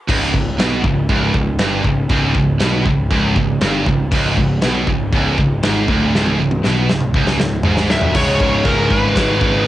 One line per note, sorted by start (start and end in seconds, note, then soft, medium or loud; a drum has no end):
0.09 0.33 C#1 medium
0.09 0.34 C#2 loud
0.09 kick loud
0.09 crash loud
0.09 china medium
0.34 0.58 C#1 medium
0.34 0.55 C#2 medium
0.34 kick medium
0.59 0.83 B1 medium
0.59 0.84 B2 loud
0.59 snare loud
0.59 china medium
0.84 1.08 C#1 medium
0.84 1.06 C#2 medium
0.84 kick medium
1.09 1.33 C#1 medium
1.09 1.34 C#2 loud
1.09 kick loud
1.09 china medium
1.34 1.59 C#1 medium
1.34 1.56 C#2 medium
1.34 kick medium
1.59 1.83 G1 loud
1.59 1.85 G2 loud
1.59 snare loud
1.59 china medium
1.84 2.08 C#1 medium
1.84 2.07 C#2 medium
1.84 kick medium
2.09 2.34 C#1 medium
2.09 2.36 C#2 loud
2.09 kick loud
2.09 china medium
2.35 2.59 C#1 medium
2.35 2.57 C#2 medium
2.35 kick medium
2.60 2.84 B1 loud
2.60 2.87 B2 loud
2.60 snare loud
2.60 china medium
2.86 3.10 C#1 medium
2.86 3.08 C#2 medium
2.86 kick medium
3.11 3.35 C#1 loud
3.11 3.36 C#2 loud
3.11 kick loud
3.11 china medium
3.36 3.60 C#1 medium
3.36 3.57 C#2 medium
3.36 kick medium
3.61 3.86 G1 medium
3.61 3.86 G2 loud
3.61 snare loud
3.61 china medium
3.86 4.11 C#1 medium
3.86 4.07 C#2 medium
3.86 kick medium
4.11 4.36 C#1 medium
4.11 4.36 C#2 loud
4.11 kick loud
4.11 crash loud
4.11 china medium
4.37 4.61 C#1 medium
4.37 4.58 C#2 medium
4.37 kick medium
4.62 4.87 B1 medium
4.62 4.87 B2 loud
4.62 snare loud
4.62 china medium
4.87 5.11 C#1 medium
4.87 5.08 C#2 medium
4.87 kick medium
5.13 5.37 C#1 loud
5.13 5.37 C#2 loud
5.13 kick loud
5.13 china medium
5.38 5.62 C#1 medium
5.38 5.59 C#2 medium
5.38 kick loud
5.63 5.88 G#1 loud
5.63 5.88 G#2 loud
5.63 snare loud
5.63 china medium
5.88 6.12 D1 loud
5.88 6.13 D2 loud
5.88 kick loud
6.14 6.38 C#1 medium
6.14 6.38 C#2 loud
6.14 snare medium
6.26 high tom medium
6.39 6.63 C#1 medium
6.39 6.59 C#2 medium
6.51 high tom medium
6.63 6.89 B1 loud
6.63 6.88 B2 loud
6.63 snare medium
6.89 7.14 C#1 medium
6.89 7.10 C#2 medium
6.89 snare medium
7.01 mid tom medium
7.14 7.38 C#1 loud
7.14 7.38 C#2 loud
7.14 kick loud
7.27 snare medium
7.39 7.64 C#1 medium
7.39 7.60 C#2 medium
7.39 snare loud
7.63 7.89 G#1 loud
7.63 7.90 G#2 loud
7.63 floor tom loud
7.77 snare medium
7.90 8.14 D1 loud
7.90 8.15 D2 loud
7.90 8.16 E5 medium
7.90 snare loud
8.01 floor tom medium
8.15 8.62 C#1 medium
8.15 8.38 C#2 loud
8.15 8.39 G#2 loud
8.15 8.40 C#3 loud
8.15 8.68 C#5 medium
8.15 kick medium
8.15 crash loud
8.15 crash medium
8.40 8.64 C#2 medium
8.40 8.64 G#2 loud
8.40 8.65 C#3 loud
8.40 kick medium
8.65 8.89 C#1 loud
8.65 8.89 C#2 medium
8.65 8.90 G#2 loud
8.65 8.91 C#3 medium
8.65 8.91 A#4 medium
8.65 kick medium
8.65 crash medium
8.90 9.14 G#1 loud
8.90 9.15 C#2 medium
8.90 9.15 G#2 loud
8.90 9.15 C#3 loud
8.90 9.67 B4 medium
8.90 kick medium
9.16 9.63 G#1 medium
9.16 9.39 C#2 medium
9.16 9.40 G#2 medium
9.16 9.40 C#3 medium
9.16 kick medium
9.16 snare loud
9.16 crash medium
9.40 9.65 C#2 medium
9.40 9.66 G#2 medium
9.40 9.66 C#3 medium
9.40 kick loud